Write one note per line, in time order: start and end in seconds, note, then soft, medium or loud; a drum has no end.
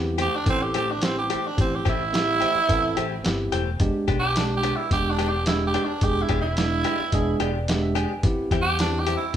0.00 0.27 E2 medium
0.00 0.26 B3 medium
0.00 0.26 C4 medium
0.00 0.26 E4 medium
0.00 0.27 G4 loud
0.18 0.36 E3 medium
0.18 0.36 A3 medium
0.18 0.35 C4 medium
0.18 0.35 G4 medium
0.18 0.37 G4 medium
0.18 closed hi-hat medium
0.36 0.47 D4 medium
0.46 1.31 A1 medium
0.46 0.82 B3 medium
0.46 0.82 C4 medium
0.46 0.64 C4 loud
0.46 0.82 E4 medium
0.46 0.82 A4 medium
0.46 kick medium
0.46 closed hi-hat medium
0.63 0.74 G4 medium
0.74 0.92 E3 medium
0.74 0.92 A3 medium
0.74 0.91 C4 medium
0.74 0.91 G4 medium
0.74 0.93 G4 medium
0.74 closed hi-hat medium
0.91 1.06 D4 medium
1.02 1.37 B3 medium
1.02 1.38 C4 medium
1.02 1.16 C4 loud
1.02 1.38 E4 medium
1.02 1.38 G4 medium
1.02 snare loud
1.02 closed hi-hat medium
1.18 1.30 G4 medium
1.30 1.48 E3 medium
1.30 1.47 A3 medium
1.30 1.47 C4 medium
1.30 1.47 G4 medium
1.30 1.49 G4 medium
1.30 closed hi-hat medium
1.47 1.58 D4 medium
1.57 1.79 A1 loud
1.57 1.93 B3 medium
1.57 1.93 C4 medium
1.57 1.77 C4 medium
1.57 1.93 E4 medium
1.57 1.93 G4 medium
1.57 kick loud
1.57 closed hi-hat medium
1.75 1.86 G4 medium
1.85 2.39 A1 medium
1.85 2.03 E3 medium
1.85 2.03 A3 medium
1.85 2.02 C4 medium
1.85 3.50 E4 loud
1.85 2.02 G4 medium
1.85 kick medium
1.85 closed hi-hat medium
2.13 2.49 B3 medium
2.13 2.49 C4 medium
2.13 2.49 E4 medium
2.13 2.49 G4 medium
2.13 snare loud
2.13 closed hi-hat medium
2.41 2.58 E3 medium
2.41 2.58 A3 medium
2.41 2.58 C4 medium
2.41 2.58 G4 medium
2.41 closed hi-hat medium
2.55 muted fingered electric bass stroke soft
2.69 2.90 A1 medium
2.69 3.04 B3 medium
2.69 3.04 C4 medium
2.69 3.05 E4 medium
2.69 3.05 A4 loud
2.69 kick medium
2.69 closed hi-hat medium
2.97 3.19 A1 medium
2.97 3.14 E3 medium
2.97 3.14 A3 medium
2.97 3.14 C4 medium
2.97 3.14 G4 medium
2.97 closed hi-hat medium
3.24 3.50 G1 medium
3.24 3.60 B3 medium
3.24 3.60 C4 medium
3.24 3.60 E4 medium
3.24 3.60 G4 medium
3.24 snare loud
3.24 closed hi-hat medium
3.52 3.77 E1 medium
3.52 3.70 E3 medium
3.52 3.70 A3 medium
3.52 3.69 C4 medium
3.52 3.69 G4 medium
3.52 closed hi-hat medium
3.80 3.91 E1 loud
3.80 4.15 G#3 medium
3.80 4.16 B3 medium
3.80 4.16 D4 medium
3.80 4.16 G4 loud
3.80 kick loud
3.80 closed hi-hat medium
3.94 muted fingered electric bass stroke soft
4.08 4.72 B1 medium
4.08 4.25 G#3 medium
4.08 4.25 B3 medium
4.08 4.25 D4 medium
4.08 4.25 G4 medium
4.08 kick medium
4.08 closed hi-hat medium
4.19 4.36 G4 loud
4.36 4.71 G#3 medium
4.36 4.71 B3 medium
4.36 4.71 D4 medium
4.36 4.55 D4 medium
4.36 4.72 G4 medium
4.36 snare loud
4.36 closed hi-hat medium
4.57 4.78 G4 medium
4.63 4.81 G#3 medium
4.63 4.81 B3 medium
4.63 4.80 D4 medium
4.63 4.80 G4 medium
4.63 closed hi-hat medium
4.76 4.92 E4 medium
4.91 5.76 E1 medium
4.91 5.26 G#3 medium
4.91 5.27 B3 medium
4.91 5.27 D4 medium
4.91 5.27 G4 medium
4.91 5.12 G4 loud
4.91 kick medium
4.91 closed hi-hat medium
5.11 5.30 D4 medium
5.19 5.36 G#3 medium
5.19 5.36 B3 medium
5.19 5.36 D4 medium
5.19 5.36 G4 medium
5.19 closed hi-hat medium
5.29 5.46 G4 loud
5.46 5.82 G#3 medium
5.46 5.82 B3 medium
5.46 5.82 D4 medium
5.46 5.65 E4 medium
5.46 5.82 G4 medium
5.46 snare loud
5.46 closed hi-hat medium
5.67 5.87 G4 medium
5.74 5.92 G#3 medium
5.74 5.92 B3 medium
5.74 5.91 D4 medium
5.74 5.91 G4 medium
5.74 closed hi-hat medium
5.85 6.05 D4 medium
6.01 6.23 E1 loud
6.01 6.38 G#3 medium
6.01 6.38 B3 medium
6.01 6.38 D4 medium
6.01 6.24 G4 medium
6.01 6.38 G#4 medium
6.01 kick loud
6.01 closed hi-hat medium
6.22 6.39 E4 medium
6.29 6.83 E1 medium
6.29 6.47 G#3 medium
6.29 6.47 B3 medium
6.29 6.47 D4 medium
6.29 6.46 G4 medium
6.29 kick medium
6.29 closed hi-hat medium
6.42 7.48 E4 loud
6.57 6.93 G#3 medium
6.57 6.93 B3 medium
6.57 6.93 D4 medium
6.57 6.93 E4 medium
6.57 snare loud
6.57 closed hi-hat medium
6.84 7.02 G#3 medium
6.84 7.02 B3 medium
6.84 7.02 D4 medium
6.84 7.02 G4 medium
6.84 closed hi-hat medium
6.99 muted fingered electric bass stroke soft
7.12 7.34 E1 medium
7.12 7.48 G#3 medium
7.12 7.49 B3 medium
7.12 7.49 D4 medium
7.12 7.49 G#4 loud
7.12 kick medium
7.12 closed hi-hat medium
7.40 8.04 E1 medium
7.40 7.58 G#3 medium
7.40 7.58 B3 medium
7.40 7.57 D4 medium
7.40 7.57 G4 medium
7.40 7.67 D5 medium
7.40 closed hi-hat medium
7.68 8.04 G#3 medium
7.68 8.04 B3 medium
7.68 8.04 D4 medium
7.68 8.04 G4 loud
7.68 7.81 E5 medium
7.68 snare loud
7.68 closed hi-hat medium
7.83 7.95 E5 medium
7.95 8.13 G#3 medium
7.95 8.13 B3 medium
7.95 8.13 D4 medium
7.95 8.12 G4 medium
7.95 8.22 G#5 medium
7.95 closed hi-hat medium
8.23 8.34 A1 loud
8.23 8.59 B3 medium
8.23 8.59 C4 medium
8.23 8.60 E4 medium
8.23 8.60 G4 loud
8.23 kick loud
8.23 closed hi-hat medium
8.38 muted fingered electric bass stroke soft
8.51 9.15 E2 medium
8.51 8.69 G3 medium
8.51 8.69 C4 medium
8.51 8.69 E4 medium
8.51 8.68 G4 medium
8.51 kick medium
8.51 closed hi-hat medium
8.62 8.79 G4 loud
8.79 9.15 B3 medium
8.79 9.15 C4 medium
8.79 9.01 D4 medium
8.79 9.15 E4 medium
8.79 9.15 G4 medium
8.79 snare loud
8.79 closed hi-hat medium
9.00 9.16 G4 loud
9.07 9.24 G3 medium
9.07 9.24 C4 medium
9.07 9.24 E4 medium
9.07 9.24 G4 medium
9.07 closed hi-hat medium
9.17 9.34 E4 medium